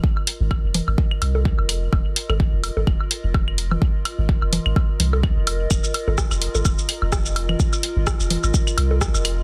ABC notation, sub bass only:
X:1
M:4/4
L:1/16
Q:"Swing 16ths" 1/4=127
K:Fm
V:1 name="Sub bass" clef=bass
z3 A,,, z F,,, z A,,, z2 C,,3 F,,,3 | F,,, z2 A,,, z F,,, z A,,, F,,, z2 F,,,4- F,,, | z3 A,,, z F,,, z A,,, z2 C,,3 F,,,3 | F,,, z2 A,,, z F,,, z A,,, F,,, z2 F,,,4- F,,, |
z3 A,,, z F,,, z A,,, z2 C,,3 F,,,3 |]